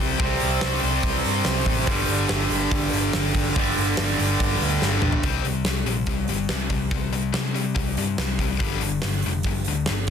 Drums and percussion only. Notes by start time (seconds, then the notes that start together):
0.20 kick
0.40 open hi-hat
0.61 snare, open hi-hat
0.83 open hi-hat
1.03 kick, open hi-hat
1.24 open hi-hat
1.45 snare
1.66 kick, open hi-hat
1.87 kick, open hi-hat
2.08 open hi-hat
2.29 snare, open hi-hat
2.50 open hi-hat
2.71 kick
2.93 open hi-hat
3.13 snare, open hi-hat
3.34 kick, open hi-hat
3.56 kick, open hi-hat
3.77 open hi-hat
3.97 snare, open hi-hat
4.19 open hi-hat
4.40 kick, open hi-hat
4.61 open hi-hat
4.82 snare
5.02 mid tom
5.12 floor tom
5.23 kick, open hi-hat
5.45 open hi-hat
5.65 snare, open hi-hat
5.86 open hi-hat
6.06 kick, open hi-hat
6.28 open hi-hat
6.49 snare
6.70 kick, open hi-hat
6.91 kick, open hi-hat
7.13 open hi-hat
7.34 snare, open hi-hat
7.56 open hi-hat
7.76 kick, open hi-hat
7.97 open hi-hat
8.18 snare, open hi-hat
8.39 kick, open hi-hat
8.60 kick, open hi-hat
8.81 open hi-hat
9.02 snare, open hi-hat
9.22 open hi-hat
9.43 kick, open hi-hat
9.65 open hi-hat
9.86 snare, open hi-hat
10.07 open hi-hat